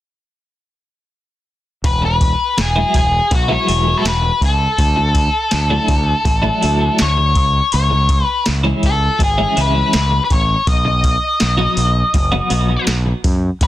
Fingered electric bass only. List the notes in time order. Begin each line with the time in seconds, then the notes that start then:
1.84 E1
2.59 E1
2.95 E1
3.31 B1
3.69 E1
4.05 E1
4.41 C#2
4.78 D2
5.53 D2
5.88 D2
6.25 A1
6.64 D2
7.01 D2
7.35 C#2
7.74 C#2
8.48 C#2
8.83 C#2
9.20 G#1
9.57 C#2
9.95 C#2
10.30 A1
10.67 B1
11.42 B1
11.77 B1
12.14 F#1
12.51 B1
12.88 B1
13.24 F#2
13.61 E1